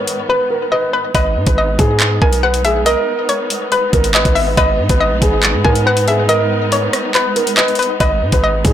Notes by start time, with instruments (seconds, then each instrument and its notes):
Already playing: string section G#2 D#3 B3, grand piano A#4, synth pluck C#5
0.07 closed hi-hat
0.29 grand piano B4, synth pluck B4
0.50 grand piano A#4
0.72 grand piano B4, synth pluck D#5
0.93 synth pluck B4
1.15 808-style bass G#1, string section G#3 B3 D#4, synth pluck B4, grand piano D#5, kick, closed hi-hat
1.36 808-style bass G#2
1.47 808-style bass G#1, grand piano B4, kick, closed hi-hat
1.58 synth pluck D#5
1.79 808-style bass G#2, grand piano G#4, kick, closed hi-hat
2.00 clap, closed hi-hat
2.22 808-style bass B1, grand piano A#4, synth pluck G#5, kick
2.33 closed hi-hat
2.43 grand piano B4, synth pluck F#5
2.54 closed hi-hat
2.65 808-style bass A#1, grand piano G#4, synth pluck E5, closed hi-hat
2.81 808-style bass B1
2.86 grand piano A#4, synth pluck D#5, closed hi-hat
3.29 synth pluck C#5, closed hi-hat
3.50 closed hi-hat
3.72 grand piano B4, synth pluck B4, closed hi-hat
3.93 808-style bass G#1, grand piano A#4, kick, closed hi-hat
4.04 closed hi-hat
4.14 grand piano B4, synth pluck D#5, clap
4.25 808-style bass G#1, kick, closed hi-hat
4.35 synth pluck E5, closed hi-hat, open hi-hat
4.57 808-style bass G#1, synth pluck B4, grand piano D#5, kick, closed hi-hat
4.79 808-style bass G#2
4.89 808-style bass G#1, grand piano B4, kick, closed hi-hat
5.01 synth pluck D#5
5.11 808-style bass A#1
5.22 808-style bass G#1, grand piano G#4, kick, closed hi-hat
5.43 clap, closed hi-hat
5.54 808-style bass G#2
5.64 808-style bass G#2, grand piano A#4, synth pluck G#5, kick
5.75 closed hi-hat
5.86 grand piano B4, synth pluck F#5
5.97 closed hi-hat
6.07 grand piano G#4, synth pluck E5, closed hi-hat
6.29 grand piano A#4, synth pluck D#5, closed hi-hat
6.72 synth pluck C#5, closed hi-hat
6.93 cross-stick, closed hi-hat
7.15 grand piano B4, synth pluck B4, clap, closed hi-hat
7.36 grand piano A#4, closed hi-hat
7.47 closed hi-hat
7.57 grand piano B4, synth pluck D#5, clap
7.68 closed hi-hat
7.75 synth pluck B4, closed hi-hat, open hi-hat
7.83 closed hi-hat
8.00 808-style bass G#1, synth pluck B4, grand piano D#5, kick, closed hi-hat
8.22 808-style bass G#2
8.32 808-style bass G#1, grand piano B4, kick, closed hi-hat
8.44 synth pluck D#5
8.65 808-style bass G#2, grand piano G#4, kick, closed hi-hat